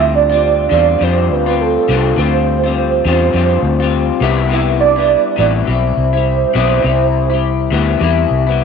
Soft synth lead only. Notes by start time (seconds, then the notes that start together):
Already playing: E5
0.15 D5
0.44 D5
1.03 C5
1.32 B4
1.61 A4
2.19 C5
2.78 C5
4.53 E5
4.80 D5
5.39 D5
5.69 C5